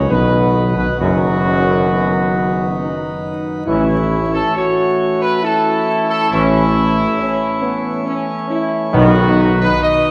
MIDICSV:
0, 0, Header, 1, 7, 480
1, 0, Start_track
1, 0, Key_signature, 5, "major"
1, 0, Tempo, 888889
1, 539, Time_signature, 3, 2, 24, 8
1, 2460, Tempo, 878477
1, 5494, End_track
2, 0, Start_track
2, 0, Title_t, "Trumpet section"
2, 0, Program_c, 0, 61
2, 0, Note_on_c, 0, 73, 95
2, 56, Note_on_c, 0, 71, 119
2, 60, Note_off_c, 0, 73, 0
2, 396, Note_off_c, 0, 71, 0
2, 420, Note_on_c, 0, 71, 93
2, 531, Note_off_c, 0, 71, 0
2, 537, Note_on_c, 0, 66, 111
2, 1720, Note_off_c, 0, 66, 0
2, 1982, Note_on_c, 0, 64, 104
2, 2318, Note_off_c, 0, 64, 0
2, 2338, Note_on_c, 0, 69, 117
2, 2450, Note_off_c, 0, 69, 0
2, 2461, Note_on_c, 0, 73, 109
2, 2800, Note_off_c, 0, 73, 0
2, 2822, Note_on_c, 0, 71, 120
2, 2933, Note_off_c, 0, 71, 0
2, 2940, Note_on_c, 0, 69, 118
2, 3278, Note_off_c, 0, 69, 0
2, 3299, Note_on_c, 0, 69, 127
2, 3411, Note_off_c, 0, 69, 0
2, 3416, Note_on_c, 0, 64, 127
2, 4590, Note_off_c, 0, 64, 0
2, 4853, Note_on_c, 0, 66, 124
2, 5194, Note_off_c, 0, 66, 0
2, 5220, Note_on_c, 0, 71, 127
2, 5331, Note_off_c, 0, 71, 0
2, 5335, Note_on_c, 0, 75, 127
2, 5494, Note_off_c, 0, 75, 0
2, 5494, End_track
3, 0, Start_track
3, 0, Title_t, "French horn section"
3, 0, Program_c, 1, 60
3, 59, Note_on_c, 1, 59, 89
3, 517, Note_off_c, 1, 59, 0
3, 538, Note_on_c, 1, 63, 78
3, 761, Note_off_c, 1, 63, 0
3, 768, Note_on_c, 1, 61, 78
3, 998, Note_off_c, 1, 61, 0
3, 1012, Note_on_c, 1, 59, 88
3, 1499, Note_off_c, 1, 59, 0
3, 1499, Note_on_c, 1, 63, 92
3, 1957, Note_off_c, 1, 63, 0
3, 1973, Note_on_c, 1, 64, 104
3, 2434, Note_off_c, 1, 64, 0
3, 2458, Note_on_c, 1, 66, 94
3, 2936, Note_on_c, 1, 64, 111
3, 2940, Note_off_c, 1, 66, 0
3, 3802, Note_off_c, 1, 64, 0
3, 3895, Note_on_c, 1, 61, 101
3, 4117, Note_off_c, 1, 61, 0
3, 4132, Note_on_c, 1, 59, 90
3, 4356, Note_off_c, 1, 59, 0
3, 4369, Note_on_c, 1, 61, 113
3, 4595, Note_off_c, 1, 61, 0
3, 4618, Note_on_c, 1, 64, 107
3, 4841, Note_off_c, 1, 64, 0
3, 4853, Note_on_c, 1, 63, 121
3, 5494, Note_off_c, 1, 63, 0
3, 5494, End_track
4, 0, Start_track
4, 0, Title_t, "Pipe organ"
4, 0, Program_c, 2, 19
4, 0, Note_on_c, 2, 51, 69
4, 0, Note_on_c, 2, 54, 61
4, 0, Note_on_c, 2, 63, 66
4, 0, Note_on_c, 2, 71, 71
4, 1959, Note_off_c, 2, 54, 0
4, 1959, Note_off_c, 2, 63, 0
4, 1960, Note_off_c, 2, 71, 0
4, 1961, Note_off_c, 2, 51, 0
4, 1982, Note_on_c, 2, 73, 73
4, 1983, Note_on_c, 2, 52, 76
4, 1983, Note_on_c, 2, 57, 75
4, 1984, Note_on_c, 2, 61, 73
4, 4854, Note_on_c, 2, 51, 88
4, 4856, Note_on_c, 2, 71, 93
4, 4857, Note_off_c, 2, 52, 0
4, 4857, Note_off_c, 2, 73, 0
4, 4857, Note_on_c, 2, 66, 81
4, 4858, Note_off_c, 2, 57, 0
4, 4858, Note_off_c, 2, 61, 0
4, 4858, Note_on_c, 2, 54, 86
4, 5494, Note_off_c, 2, 51, 0
4, 5494, Note_off_c, 2, 54, 0
4, 5494, Note_off_c, 2, 66, 0
4, 5494, Note_off_c, 2, 71, 0
4, 5494, End_track
5, 0, Start_track
5, 0, Title_t, "Trombone section"
5, 0, Program_c, 3, 61
5, 0, Note_on_c, 3, 49, 105
5, 51, Note_on_c, 3, 47, 94
5, 62, Note_off_c, 3, 49, 0
5, 393, Note_off_c, 3, 47, 0
5, 414, Note_on_c, 3, 47, 94
5, 469, Note_off_c, 3, 47, 0
5, 542, Note_on_c, 3, 42, 112
5, 1723, Note_off_c, 3, 42, 0
5, 1984, Note_on_c, 3, 52, 105
5, 1990, Note_on_c, 3, 61, 94
5, 2162, Note_off_c, 3, 52, 0
5, 2165, Note_off_c, 3, 61, 0
5, 3431, Note_on_c, 3, 52, 105
5, 3431, Note_on_c, 3, 61, 115
5, 3604, Note_off_c, 3, 52, 0
5, 3604, Note_off_c, 3, 61, 0
5, 4850, Note_on_c, 3, 51, 124
5, 4850, Note_on_c, 3, 59, 124
5, 5034, Note_off_c, 3, 51, 0
5, 5034, Note_off_c, 3, 59, 0
5, 5494, End_track
6, 0, Start_track
6, 0, Title_t, "Timpani"
6, 0, Program_c, 4, 47
6, 4855, Note_on_c, 4, 47, 124
6, 5494, Note_off_c, 4, 47, 0
6, 5494, End_track
7, 0, Start_track
7, 0, Title_t, "Tuba"
7, 0, Program_c, 5, 58
7, 0, Note_on_c, 5, 37, 95
7, 55, Note_off_c, 5, 37, 0
7, 59, Note_on_c, 5, 35, 107
7, 397, Note_off_c, 5, 35, 0
7, 417, Note_on_c, 5, 35, 84
7, 471, Note_off_c, 5, 35, 0
7, 537, Note_on_c, 5, 30, 103
7, 1720, Note_off_c, 5, 30, 0
7, 1983, Note_on_c, 5, 33, 107
7, 2381, Note_off_c, 5, 33, 0
7, 3420, Note_on_c, 5, 33, 116
7, 3817, Note_off_c, 5, 33, 0
7, 4857, Note_on_c, 5, 35, 127
7, 5258, Note_off_c, 5, 35, 0
7, 5494, End_track
0, 0, End_of_file